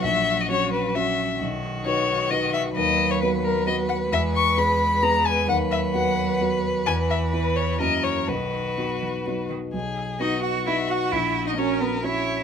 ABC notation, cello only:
X:1
M:3/4
L:1/16
Q:1/4=131
K:B
V:1 name="Cello" clef=bass
F,12 | D,12 | F,12 | G,12 |
F,12 | E,12 | D,4 D,2 E,2 F,2 D,2 | z4 D2 F2 E2 F2 |
E3 D C2 B,2 E4 |]